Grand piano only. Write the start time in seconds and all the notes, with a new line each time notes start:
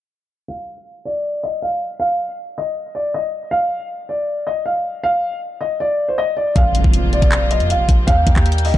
0.48 F5
1.05 D5
1.43 D#5
1.62 F5
2.00 F5
2.58 D#5
2.95 D5
3.14 D#5
3.51 F5
4.09 D5
4.47 D#5
4.66 F5
5.04 F5
5.61 D#5
5.80 D5
6.08 C5
6.18 D#5
6.37 D5
6.56 F5
7.13 D5
7.51 D#5
7.70 F5
8.07 F5
8.65 D#5